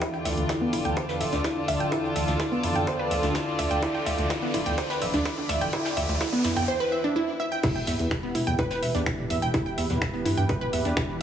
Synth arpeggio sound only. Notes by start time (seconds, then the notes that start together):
0.02 E4
0.14 G5
0.25 E5
0.49 E4
0.61 B3
0.73 E4
0.85 G5
0.97 C5
1.09 B4
1.21 E5
1.33 D4
1.44 E4
1.68 E5
1.80 G5
1.92 E4
2.04 G5
2.16 E5
2.40 E4
2.52 B3
2.64 E4
2.76 G5
2.87 C5
2.99 B4
3.11 E5
3.23 D4
3.35 E4
3.59 E5
3.71 G5
3.83 E4
3.95 G5
4.06 E5
4.30 E4
4.42 B3
4.54 E4
4.66 G5
4.78 C5
4.90 B4
5.02 E5
5.14 D4
5.25 E4
5.49 E5
5.61 G5
5.73 E4
5.85 G5
5.97 E5
6.21 E4
6.33 B3
6.44 E4
6.56 G5
6.68 C5
6.80 B4
6.92 E5
7.04 D4
7.16 E4
7.40 E5
7.52 G5
7.64 E4
7.76 G5
7.87 E5
8.11 E4
8.23 B3
8.35 E4
8.47 G5
8.59 B4
8.71 B4
8.83 E5
8.95 D4
9.06 E4
9.30 E5
9.42 G5
9.54 E4
9.66 G5
9.78 E5
10.02 E4
10.14 B3
10.25 E4
10.37 G5
10.49 B4
10.61 B4
10.73 E5
10.85 D4
10.97 E4